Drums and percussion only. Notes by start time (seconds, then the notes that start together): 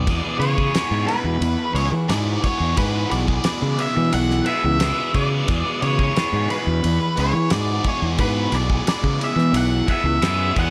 0.07 kick, ride
0.42 ride
0.58 kick
0.75 snare, ride
1.08 ride
1.42 ride
1.76 ride
2.09 snare, ride
2.44 kick, ride
2.77 kick, ride
3.11 ride
3.28 kick
3.44 snare, ride
3.79 ride
4.13 ride
4.31 snare
4.46 ride
4.80 snare, ride
5.14 kick, ride
5.48 kick, ride
5.82 ride
5.99 kick
6.16 snare, ride
6.50 ride
6.84 ride
7.17 ride
7.50 snare, ride
7.84 kick, ride
8.18 kick, ride
8.52 snare, ride
8.70 kick
8.87 snare, ride
9.04 kick
9.21 ride
9.39 snare
9.54 ride
9.88 kick, ride
10.22 snare, ride
10.56 kick, ride